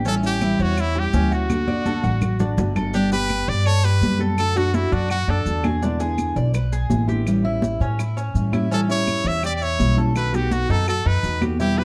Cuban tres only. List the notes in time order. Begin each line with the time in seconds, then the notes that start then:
0.05 C#4
0.42 E4
0.60 C#5
0.95 G4
1.14 C#4
1.32 F#4
1.68 D5
1.86 A4
2.03 F#4
2.40 D4
2.76 A4
2.94 D4
3.12 G4
3.48 D5
3.66 A4
3.84 G4
4.20 A4
4.56 F#4
4.92 D4
5.10 F#4
5.28 D4
5.64 G#4
5.82 D4
6.00 G#4
6.36 D5
6.54 B4
6.72 G#4
7.09 G4
7.45 E4
7.81 C#4
7.99 E4
8.17 C#4
8.53 E4
8.71 C#4
8.89 E4
9.25 C#5
9.43 G4
9.61 E4
9.98 A4
10.34 F#4
10.70 D#4
10.88 F#4
11.06 D#4
11.42 G4
11.60 E4
11.78 G4